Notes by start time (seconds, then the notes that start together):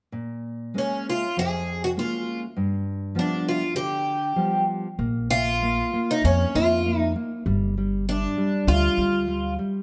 0.12 A#2
0.74 G#3 A#3 C#4
0.78 C#4
1.10 F4
1.37 F2 G#4
1.84 F#4
1.97 G#3 A#3 C#4 F4
2.56 G2
3.15 F3 G3 B3 D4
3.48 F4
3.75 D3 G4
4.36 F3 G3 B3
4.99 A#1 A#3
5.30 A#3 F4
5.63 A#3
5.93 A#3
6.11 D#4
6.24 F2 A#3 C#4
6.55 F2 A#3 F4
6.85 A#3
6.98 D#4
7.16 A#3
7.46 G1 G3
7.78 G3
8.08 G3 D4
8.37 G3
8.67 D2 G3 F4
8.97 D2 G3
9.28 G3
9.59 G3